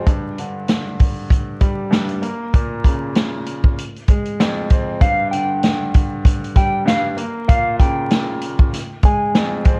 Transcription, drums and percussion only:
0.06 kick loud
0.06 closed hi-hat medium
0.38 closed hi-hat medium
0.68 snare loud
0.68 closed hi-hat medium
0.99 kick medium
0.99 open hi-hat medium
1.30 kick loud
1.30 closed hi-hat medium
1.61 kick medium
1.61 closed hi-hat medium
1.93 snare loud
1.93 closed hi-hat medium
2.09 closed hi-hat medium
2.22 closed hi-hat medium
2.54 kick loud
2.54 closed hi-hat medium
2.84 kick medium
2.84 closed hi-hat medium
3.15 snare loud
3.15 closed hi-hat medium
3.47 closed hi-hat medium
3.64 kick medium
3.79 closed hi-hat medium
3.97 closed hi-hat medium
4.08 kick medium
4.08 closed hi-hat medium
4.25 closed hi-hat soft
4.40 snare loud
4.40 closed hi-hat medium
4.70 kick loud
4.70 closed hi-hat medium
5.01 kick loud
5.01 closed hi-hat medium
5.33 closed hi-hat medium
5.63 snare loud
5.63 closed hi-hat medium
5.94 kick loud
5.94 closed hi-hat medium
6.25 kick loud
6.25 closed hi-hat medium
6.44 closed hi-hat medium
6.56 kick medium
6.56 closed hi-hat medium
6.88 snare loud
6.88 closed hi-hat medium
7.17 closed hi-hat medium
7.49 kick loud
7.49 closed hi-hat medium
7.79 kick medium
7.79 closed hi-hat medium
8.10 snare loud
8.10 closed hi-hat medium
8.41 closed hi-hat medium
8.59 kick medium
8.73 snare soft
8.73 closed hi-hat medium
9.03 kick medium
9.03 closed hi-hat medium
9.35 snare loud
9.35 closed hi-hat medium
9.65 kick loud
9.65 closed hi-hat medium

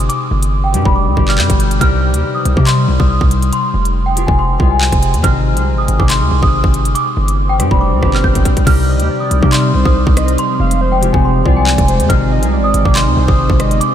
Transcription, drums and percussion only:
0.10 closed hi-hat medium
0.43 closed hi-hat medium
0.74 closed hi-hat medium
0.85 kick medium
1.17 kick medium
1.28 clap medium
1.38 clap loud
1.50 kick loud
1.50 closed hi-hat medium
1.60 closed hi-hat medium
1.71 closed hi-hat medium
1.81 kick loud
1.81 closed hi-hat medium
2.14 closed hi-hat medium
2.45 closed hi-hat medium
2.57 kick medium
2.67 clap loud
2.67 closed hi-hat medium
3.00 kick loud
3.21 kick loud
3.31 closed hi-hat medium
3.43 closed hi-hat medium
3.53 closed hi-hat medium
3.85 closed hi-hat medium
4.17 closed hi-hat medium
4.28 kick medium
4.60 kick medium
4.81 clap loud
4.92 kick loud
4.92 closed hi-hat medium
5.03 closed hi-hat medium
5.14 closed hi-hat medium
5.24 kick loud
5.24 closed hi-hat medium
5.57 closed hi-hat medium
5.88 closed hi-hat medium
6.00 kick medium
6.10 clap loud
6.10 closed hi-hat medium
6.43 kick loud
6.64 kick loud
6.74 closed hi-hat medium
6.85 closed hi-hat medium
6.95 closed hi-hat medium
7.28 closed hi-hat medium
7.60 cross-stick medium
7.60 closed hi-hat medium
7.71 kick medium
8.03 kick medium
8.03 cross-stick medium
8.14 clap medium
8.24 kick medium
8.35 kick medium
8.35 closed hi-hat medium
8.45 kick medium
8.45 closed hi-hat medium
8.57 kick medium
8.57 closed hi-hat medium
8.67 kick loud
8.67 closed hi-hat medium
8.67 crash loud
9.00 closed hi-hat medium
9.31 closed hi-hat medium
9.43 kick loud
9.53 clap loud
9.53 closed hi-hat medium
9.85 kick loud
10.07 kick loud
10.17 cross-stick loud
10.17 closed hi-hat medium
10.28 closed hi-hat medium
10.38 closed hi-hat medium
10.71 closed hi-hat medium
11.03 closed hi-hat medium
11.14 kick loud
11.46 kick medium
11.67 clap loud
11.78 kick loud
11.78 closed hi-hat medium
11.88 closed hi-hat medium
12.00 closed hi-hat medium
12.10 kick loud
12.10 closed hi-hat medium
12.43 closed hi-hat medium
12.74 closed hi-hat medium
12.85 kick medium
12.96 clap loud
12.96 closed hi-hat medium
13.28 kick loud
13.50 kick loud
13.60 cross-stick loud
13.60 closed hi-hat medium
13.71 closed hi-hat medium
13.81 closed hi-hat medium

